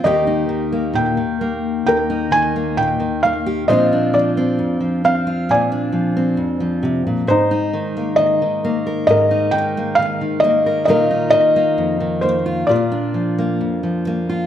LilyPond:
<<
  \new Staff \with { instrumentName = "Felt piano" } { \time 4/4 \key bes \mixolydian \tempo 4 = 66 << { ees''4 g''4 g''8 aes''8 g''8 f''8 | ees''8 d''4 f''8 aes''4. r8 | c''4 ees''4 ees''8 g''8 f''8 ees''8 | ees''8 ees''4 c''8 d''4. r8 | } \\ { g'2 bes'2 | c''2 d''2 | ees'2 bes'2 | bes'2 f'2 | } >> }
  \new Staff \with { instrumentName = "Steel-string acoustic guitar" } { \time 4/4 \key bes \mixolydian << { <ees bes ees' g'>16 ees'8 bes8. bes8. ees'8 bes8. bes16 g'16 | <f c' d' f'>16 d'8 c'8. c'16 f'8 d'8 c'4~ c'16 | r16 ees'8 bes8. bes16 bes'8 ees'8 bes8. bes16 bes'16 | <ees bes ees' f'>16 ees'8 bes8. bes16 f'8 d'8 bes8. bes16 f'16 | } \\ { ees,8 ees8 bes,16 ees8. ees,8 ees8 bes,16 ees8. | bes,8 f8 f,16 f8. bes,8 f8 f,16 f16 c16 bes,16 | aes,8 ees8 ees16 ees8. aes,8 ees8 ees16 ees8. | bes,8 ees8 f,16 ees8. bes,8 f8 f,16 f8. | } >> }
>>